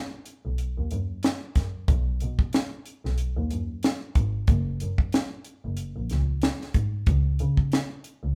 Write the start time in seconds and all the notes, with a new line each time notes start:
0.26 closed hi-hat
0.45 B1
0.58 closed hi-hat
0.77 D#2
0.91 F#2, closed hi-hat
1.23 snare, closed hi-hat
1.55 F#2, kick, snare, closed hi-hat
1.88 B1, kick, closed hi-hat
2.20 B2, closed hi-hat
2.39 kick
2.53 snare, closed hi-hat
2.86 closed hi-hat
3.04 B1, snare
3.18 closed hi-hat
3.37 D#2
3.51 F#2, closed hi-hat
3.83 snare, closed hi-hat
4.15 G#1, kick, closed hi-hat
4.47 F#1, kick, closed hi-hat
4.80 F#2, closed hi-hat
4.98 kick
5.12 snare, closed hi-hat
5.45 closed hi-hat
5.64 F#1
5.77 closed hi-hat
5.96 A#1
6.10 C#2, snare, closed hi-hat
6.42 snare, closed hi-hat
6.61 snare
6.74 G#2, kick, closed hi-hat
7.06 C#2, kick, closed hi-hat
7.39 C#3, closed hi-hat
7.57 kick
7.72 snare, closed hi-hat
8.04 closed hi-hat
8.23 C#2